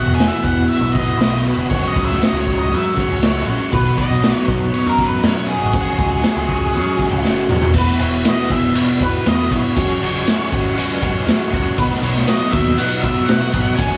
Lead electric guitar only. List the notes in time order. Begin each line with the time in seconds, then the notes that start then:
Already playing: F#5
0.14 G#5
0.28 E5
0.43 F#5
0.69 E5
0.93 D#5
1.70 C#5
1.88 D#5
2.05 E5
2.23 D#5
2.40 C#5
2.59 D#5
2.75 E5
2.99 C#5
3.73 B4
3.98 D#5
4.74 C#5
4.89 A#4
5.06 B4
5.24 C#5
5.47 G#4
7.78 B4
8.02 C#5
8.29 D#5
8.51 E5
8.76 C#5
9.03 B4
9.28 D#5
9.52 C#5
11.78 B4
12.04 C#5
12.28 D#5
12.51 E5
12.78 F#5
13.01 E5
13.26 F#5
13.75 G#5